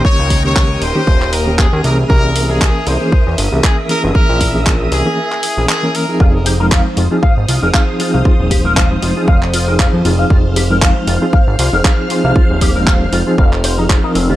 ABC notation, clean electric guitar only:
X:1
M:4/4
L:1/16
Q:"Swing 16ths" 1/4=117
K:Fm
V:1 name="Clean electric guitar"
z16 | z16 | z16 | F z G B f z F F f z F B f z F f |
F z G B f z F F f z F B f z F f | F z G B f z F F f z F B f z F f | F z G B f z F F f z c E F E C F |]